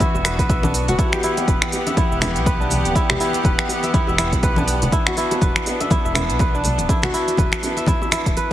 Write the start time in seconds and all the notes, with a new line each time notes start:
Already playing: B3 D4 F#4 B4 E5
0.00 E4, kick, closed hi-hat, high conga, shaker
0.14 E1 E5, high bongo, shaker
0.25 B4, finger snap, open hi-hat, muted conga, shaker
0.39 B1 B4, kick, closed hi-hat, shaker
0.49 E5, kick, closed hi-hat, muted conga, shaker
0.63 D4, low bongo, high conga, shaker
0.74 open hi-hat, muted conga, shaker
0.88 D1 F#4, closed hi-hat, low conga, shaker
0.99 E3 E4 G4 F#5, kick, closed hi-hat, shaker
1.12 G4, finger snap, muted conga, high conga, shaker
1.23 E4, open hi-hat, shaker
1.37 closed hi-hat, high bongo, muted conga, shaker
1.48 E1 B4, kick, closed hi-hat, high conga, shaker
1.62 finger snap, muted conga, shaker
1.72 open hi-hat, high bongo, shaker
1.86 E5, closed hi-hat, low bongo, muted conga, shaker
1.97 E4, kick, closed hi-hat, high conga, shaker
2.11 E1 E5, shaker
2.21 E4, finger snap, open hi-hat, low bongo, muted conga, low conga, shaker
2.36 B1, closed hi-hat, shaker
2.46 B4, kick, closed hi-hat, muted conga, high conga, shaker
2.60 D4, shaker
2.70 open hi-hat, muted conga, low conga, shaker
2.85 D1, closed hi-hat, high conga, shaker
2.95 E4, kick, closed hi-hat, shaker
3.09 G4, finger snap, muted conga, high conga, low conga, shaker
3.20 E4, open hi-hat, shaker
3.33 closed hi-hat, muted conga, shaker
3.44 E1 B4, kick, closed hi-hat, high conga, shaker
3.59 finger snap, muted conga, shaker
3.69 open hi-hat, high bongo, shaker
3.83 E5, closed hi-hat, muted conga, shaker
3.94 E4, kick, closed hi-hat, high conga, shaker
4.07 E1 E5, high bongo, shaker
4.18 E4, finger snap, open hi-hat, muted conga, shaker
4.32 B1, kick, closed hi-hat, shaker
4.43 B4, kick, closed hi-hat, muted conga, shaker
4.56 D4, low bongo, high conga, shaker
4.67 open hi-hat, muted conga, shaker
4.82 D1, closed hi-hat, low conga, shaker
4.92 D4 E4, kick, closed hi-hat, shaker
5.07 F#4, finger snap, muted conga, high conga, shaker
5.17 E4, open hi-hat, shaker
5.31 closed hi-hat, high bongo, muted conga, shaker
5.41 E1 B4, kick, closed hi-hat, high conga, shaker
5.56 finger snap, muted conga, shaker
5.66 open hi-hat, high bongo, shaker
5.80 E5, closed hi-hat, low bongo, muted conga, shaker
5.91 E4, kick, closed hi-hat, high conga, shaker
6.05 E1 E5, shaker
6.15 E4, finger snap, open hi-hat, low bongo, muted conga, low conga, shaker
6.29 B1, closed hi-hat, shaker
6.39 B4, kick, closed hi-hat, muted conga, high conga, shaker
6.54 D4, shaker
6.64 open hi-hat, muted conga, low conga, shaker
6.78 D1, closed hi-hat, high conga, shaker
6.89 E4, kick, closed hi-hat, low bongo, shaker
7.02 F#4, finger snap, muted conga, high conga, low conga, shaker
7.14 E4, open hi-hat, shaker
7.28 closed hi-hat, muted conga, shaker
7.37 E1 B4, kick, closed hi-hat, high conga, shaker
7.52 finger snap, muted conga, shaker
7.63 open hi-hat, high bongo, low bongo, shaker
7.77 E5, closed hi-hat, muted conga, shaker
7.86 E4, kick, closed hi-hat, high conga, shaker
8.02 E5, high bongo, shaker
8.11 E4, finger snap, open hi-hat, muted conga, high conga, shaker
8.26 D1, kick, closed hi-hat, shaker
8.37 B4, closed hi-hat, muted conga, shaker